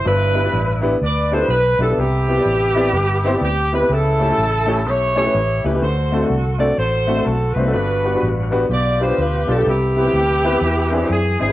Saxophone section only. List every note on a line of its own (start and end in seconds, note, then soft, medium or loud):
0.06 0.98 D4 medium
0.06 0.98 E4 medium
0.06 0.80 B4 loud
1.03 1.49 B4 medium
1.03 1.30 D5 loud
1.33 1.50 C5 loud
1.51 1.81 B4 loud
1.82 1.98 A4 medium
1.99 3.39 B3 medium
1.99 3.39 E4 medium
1.99 3.42 G4 loud
3.43 3.71 G4 loud
3.75 3.91 B4 medium
3.92 4.83 E4 medium
3.92 4.88 A4 loud
4.88 5.16 E4 medium
4.88 5.15 G4 medium
4.88 5.16 C#5 loud
5.16 5.78 E4 medium
5.16 5.78 G4 medium
5.16 5.61 C#5 loud
5.66 5.83 B4 loud
5.83 6.75 F#4 medium
5.83 6.75 A4 medium
5.83 6.28 C5 loud
6.60 6.77 D5 loud
6.78 7.71 F#4 medium
6.78 7.24 A4 medium
6.78 7.26 C5 loud
7.25 7.56 A4 loud
7.54 7.72 B4 loud
7.73 8.67 D4 medium
7.73 8.67 F#4 medium
7.73 8.48 B4 loud
8.71 9.63 F4 medium
8.71 9.63 G4 medium
8.71 8.99 D5 loud
9.03 9.20 C5 loud
9.20 9.50 B4 loud
9.51 9.67 A4 loud
9.68 11.07 B3 medium
9.68 11.07 E4 medium
9.68 11.12 G4 loud
11.12 11.40 G#4 medium
11.41 11.52 G#4 loud